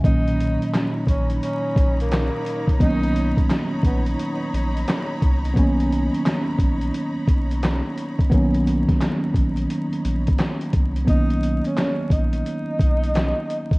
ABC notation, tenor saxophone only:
X:1
M:4/4
L:1/16
Q:"Swing 16ths" 1/4=87
K:B
V:1 name="Tenor saxophone"
D4 z2 C z C3 A,4- A, | D4 z2 B, z8 z | z16 | z16 |
D3 C C2 D8- D2 |]